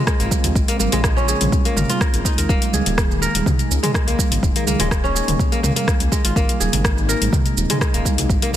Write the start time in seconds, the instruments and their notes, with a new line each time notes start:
Already playing: analog synth pad C#3 G#3 C4 F4, kora A#3 G#4 A#4
0.07 kora G#3, kick, cross-stick, shaker
0.20 detuned saw bass G#1, kora A#3, closed hi-hat, shaker
0.31 kick, high conga, shaker
0.44 detuned saw bass D#2, closed hi-hat, low conga, shaker
0.55 detuned saw bass A#1, kick, shaker
0.68 kora A#3, closed hi-hat, shaker
0.79 detuned saw bass G#1, kora A#3, high conga, shaker
0.92 detuned saw bass A#1, kora G#3, closed hi-hat, low conga, shaker
1.04 kora G#3, kick, cross-stick, shaker
1.17 kora C#4, shaker
1.28 kora G#4, shaker
1.41 detuned saw bass A#1, closed hi-hat, mid tom, high conga, shaker
1.52 kick, low conga, shaker
1.65 kora A#3, closed hi-hat, shaker
1.76 detuned saw bass G#1, kora A#4, mid tom, shaker
1.89 kora F4, closed hi-hat, high conga, shaker
2.01 kora A#4, kick, cross-stick, shaker
2.14 detuned saw bass G#1, closed hi-hat, shaker
2.25 kora D#4, kick, shaker
2.38 detuned saw bass D#2, kora A#4, closed hi-hat, shaker
2.49 detuned saw bass D#1, analog synth pad D#3 A#3 G#4, kora A#3, kick, shaker
2.62 closed hi-hat, high conga, shaker
2.73 detuned saw bass C#2, kora G#4, high conga, shaker
2.86 detuned saw bass D#1, closed hi-hat, low conga, shaker
2.98 kick, cross-stick, shaker
3.11 shaker
3.22 kora A#4, shaker
3.34 detuned saw bass D#1, closed hi-hat, high conga, shaker
3.46 kick, mid tom, low conga, shaker
3.59 closed hi-hat, shaker
3.70 detuned saw bass C#2, shaker
3.83 kora G#3, closed hi-hat, mid tom, shaker
3.94 kick, cross-stick, shaker
4.07 detuned saw bass C#2, kora A#3, closed hi-hat, shaker
4.19 kick, high conga, shaker
4.31 detuned saw bass G#1, closed hi-hat, low conga, shaker
4.43 detuned saw bass D#1, kick, shaker
4.56 kora A#3, closed hi-hat, shaker
4.67 detuned saw bass C#2, kora A#3, high conga, shaker
4.79 detuned saw bass D#1, kora G#3, closed hi-hat, low conga, shaker
4.91 kora G#3, kick, cross-stick, shaker
5.04 kora C#4, shaker
5.15 kora G#4, shaker
5.28 detuned saw bass D#1, closed hi-hat, mid tom, high conga, shaker
5.39 kick, low conga, shaker
5.52 kora A#3, closed hi-hat, shaker
5.63 detuned saw bass C#2, kora A#3, mid tom, shaker
5.76 kora A#3, closed hi-hat, high conga, shaker
5.88 kick, cross-stick, shaker
6.00 detuned saw bass C#2, closed hi-hat, shaker
6.12 kora G#3, kick, shaker
6.24 detuned saw bass G#1, kora F4, closed hi-hat, shaker
6.35 detuned saw bass G#1, analog synth pad C3 G#3 D#4, kora A#3, kick, shaker
6.49 closed hi-hat, high conga, shaker
6.60 detuned saw bass D#1, kora G#4, high conga, shaker
6.73 detuned saw bass G#1, closed hi-hat, low conga, shaker
6.84 kick, cross-stick, shaker
6.98 shaker
7.09 kora A#4, shaker
7.21 detuned saw bass G#1, closed hi-hat, high conga, shaker
7.32 kick, mid tom, low conga, shaker
7.46 closed hi-hat, shaker
7.57 detuned saw bass D#1, shaker
7.70 kora G#3, closed hi-hat, mid tom, shaker
7.81 kora G#3, kick, cross-stick, shaker
7.94 detuned saw bass D#1, kora A#3, closed hi-hat, shaker
8.05 kick, high conga, shaker
8.18 detuned saw bass C2, closed hi-hat, low conga, shaker
8.29 detuned saw bass G#1, analog synth pad C4, kick, shaker
8.42 kora A#3, closed hi-hat, shaker
8.53 high conga